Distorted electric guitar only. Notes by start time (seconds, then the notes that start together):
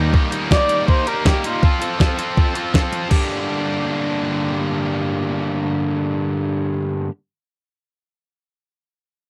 Already playing: D#3 G3 A#3 D#4 G4
0.13 D#3 G3 A#3 D#4 G4
0.30 A#3 D#4 G4
0.50 D#3 G3 A#3 D#4 G4
0.69 A#3 D#4 G4
1.07 A#3 D#4 G4
1.25 G3 A#3 D#4 G4
1.63 F3 C4 F4 A4
1.80 C4 F4 A4
1.98 F3 C4 F4 A4
2.17 C4 F4 A4
2.54 C4 F4 A4
2.73 F3 C4 F4 A4
3.09 G2 D3 G3 A#3 D4
3.13 G4